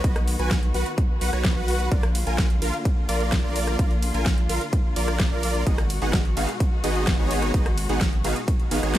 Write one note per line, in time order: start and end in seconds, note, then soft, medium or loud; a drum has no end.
0.00 1.88 D#3 medium
0.00 1.88 B3 medium
0.00 1.88 F#4 medium
0.04 0.37 B1 loud
0.04 0.16 F#4 medium
0.04 0.16 B4 medium
0.04 kick loud
0.04 closed hi-hat medium
0.16 cross-stick medium
0.16 closed hi-hat soft
0.28 open hi-hat loud
0.39 0.72 B1 loud
0.39 0.59 F#4 medium
0.39 0.59 B4 medium
0.39 0.59 G#5 medium
0.39 closed hi-hat medium
0.51 kick loud
0.51 snare loud
0.51 closed hi-hat medium
0.63 closed hi-hat soft
0.74 0.84 B1 loud
0.74 0.87 F#4 medium
0.74 0.87 B4 medium
0.74 0.87 F#5 medium
0.74 open hi-hat loud
0.86 closed hi-hat medium
0.98 kick loud
0.98 closed hi-hat medium
1.21 1.31 B1 loud
1.21 1.30 F#4 loud
1.21 1.30 B4 medium
1.21 1.30 F#5 loud
1.21 open hi-hat loud
1.33 1.54 B1 loud
1.33 1.53 F#4 medium
1.33 1.53 B4 medium
1.33 1.53 C#5 medium
1.33 cross-stick medium
1.33 closed hi-hat medium
1.45 kick loud
1.45 snare loud
1.45 closed hi-hat medium
1.56 1.89 B1 loud
1.56 1.89 F#4 medium
1.56 1.89 B4 medium
1.56 1.89 F#5 loud
1.68 open hi-hat loud
1.80 closed hi-hat medium
1.92 2.24 A#1 loud
1.92 5.63 D3 medium
1.92 5.63 A#3 medium
1.92 5.63 F4 medium
1.92 2.04 F4 medium
1.92 2.04 D5 medium
1.92 kick loud
1.92 closed hi-hat medium
2.03 cross-stick medium
2.03 closed hi-hat soft
2.15 open hi-hat loud
2.15 ride medium
2.27 2.60 A#1 loud
2.27 2.46 F4 medium
2.27 2.46 A#4 medium
2.27 2.46 G#5 medium
2.27 closed hi-hat medium
2.38 kick loud
2.38 snare loud
2.38 closed hi-hat medium
2.50 closed hi-hat soft
2.62 2.72 A#1 loud
2.62 2.74 F4 medium
2.62 2.74 A#4 medium
2.62 2.74 F5 medium
2.62 open hi-hat loud
2.62 ride medium
2.74 closed hi-hat medium
2.85 kick loud
2.85 closed hi-hat medium
3.09 3.42 A#1 loud
3.09 3.41 F4 medium
3.09 3.41 A#4 medium
3.09 3.41 D5 medium
3.09 open hi-hat loud
3.09 ride medium
3.21 closed hi-hat medium
3.32 kick loud
3.32 snare loud
3.32 closed hi-hat medium
3.44 3.77 A#1 medium
3.44 3.76 F4 medium
3.44 3.76 A#4 medium
3.44 3.76 D5 loud
3.56 open hi-hat loud
3.56 ride medium
3.67 cross-stick medium
3.67 closed hi-hat medium
3.79 4.12 A#1 loud
3.79 3.91 F4 medium
3.79 3.91 D5 loud
3.79 kick loud
3.79 closed hi-hat medium
3.91 closed hi-hat soft
4.03 open hi-hat loud
4.03 ride medium
4.14 4.47 A#1 loud
4.14 4.34 F4 medium
4.14 4.34 A#4 medium
4.14 4.34 G#5 medium
4.14 closed hi-hat medium
4.26 kick loud
4.26 snare loud
4.26 closed hi-hat medium
4.38 closed hi-hat soft
4.49 4.59 A#1 loud
4.49 4.62 F4 medium
4.49 4.62 A#4 medium
4.49 4.62 F5 medium
4.49 open hi-hat loud
4.49 ride medium
4.61 closed hi-hat medium
4.73 kick loud
4.73 closed hi-hat medium
4.96 5.29 A#1 loud
4.96 5.29 F4 medium
4.96 5.29 A#4 medium
4.96 5.29 D5 medium
4.96 open hi-hat loud
4.96 ride medium
5.08 cross-stick medium
5.08 closed hi-hat medium
5.20 kick loud
5.20 snare loud
5.20 closed hi-hat medium
5.31 5.64 A#1 loud
5.31 5.64 F4 medium
5.31 5.64 A#4 medium
5.31 5.64 D5 loud
5.43 open hi-hat loud
5.43 ride medium
5.55 closed hi-hat medium
5.67 5.99 G#1 loud
5.67 8.98 B2 medium
5.67 8.98 G#3 medium
5.67 5.79 B3 medium
5.67 5.79 D#4 medium
5.67 5.79 F#4 medium
5.67 8.98 F#4 medium
5.67 5.79 G#4 medium
5.67 5.79 D#5 medium
5.67 kick loud
5.67 closed hi-hat medium
5.78 cross-stick medium
5.78 closed hi-hat soft
5.90 open hi-hat loud
5.90 ride medium
6.02 6.35 G#1 loud
6.02 6.21 B3 medium
6.02 6.21 D#4 medium
6.02 6.21 F#4 medium
6.02 6.21 G#4 medium
6.02 6.21 F#5 medium
6.02 closed hi-hat medium
6.13 kick loud
6.13 snare loud
6.13 closed hi-hat medium
6.25 closed hi-hat soft
6.37 6.47 G#1 loud
6.37 6.49 B3 medium
6.37 6.49 D#4 medium
6.37 6.49 F#4 medium
6.37 6.49 G#4 medium
6.37 6.49 F5 medium
6.37 open hi-hat loud
6.37 ride medium
6.49 closed hi-hat medium
6.60 kick loud
6.60 closed hi-hat medium
6.84 7.17 G#1 loud
6.84 7.16 B3 medium
6.84 7.16 D#4 medium
6.84 7.16 F#4 medium
6.84 7.16 G#4 medium
6.84 7.16 D#5 medium
6.84 open hi-hat loud
6.84 ride medium
6.95 closed hi-hat medium
7.07 kick loud
7.07 snare loud
7.07 closed hi-hat medium
7.19 7.52 G#1 loud
7.19 7.51 B3 medium
7.19 7.51 D#4 medium
7.19 7.51 F#4 medium
7.19 7.51 G#4 medium
7.19 7.51 C#5 loud
7.31 open hi-hat loud
7.31 ride medium
7.42 cross-stick medium
7.42 closed hi-hat medium
7.54 7.87 G#1 loud
7.54 7.66 B3 medium
7.54 7.66 D#4 medium
7.54 7.66 F#4 medium
7.54 7.66 G#4 medium
7.54 7.66 D#5 medium
7.54 kick loud
7.54 closed hi-hat medium
7.66 cross-stick medium
7.66 closed hi-hat soft
7.78 open hi-hat loud
7.78 ride medium
7.89 8.22 G#1 loud
7.89 8.09 B3 medium
7.89 8.09 D#4 medium
7.89 8.09 F#4 medium
7.89 8.09 G#4 medium
7.89 8.09 F#5 medium
7.89 closed hi-hat medium
8.01 kick loud
8.01 snare loud
8.01 closed hi-hat medium
8.13 closed hi-hat soft
8.24 8.34 G#1 loud
8.24 8.37 B3 medium
8.24 8.37 D#4 medium
8.24 8.37 F#4 medium
8.24 8.37 G#4 medium
8.24 8.37 F5 medium
8.24 open hi-hat loud
8.24 ride medium
8.36 closed hi-hat medium
8.48 kick loud
8.48 closed hi-hat medium
8.60 closed hi-hat soft
8.71 8.81 G#1 loud
8.71 8.80 B3 loud
8.71 8.80 D#4 medium
8.71 8.80 F#4 medium
8.71 8.80 G#4 medium
8.71 8.80 F5 loud
8.71 open hi-hat loud
8.71 ride medium
8.83 8.95 G#1 loud
8.83 8.98 B3 medium
8.83 8.98 D#4 medium
8.83 8.98 F#4 medium
8.83 8.98 G#4 medium
8.83 8.98 C#5 medium
8.83 cross-stick medium
8.83 closed hi-hat medium
8.95 snare loud
8.95 closed hi-hat medium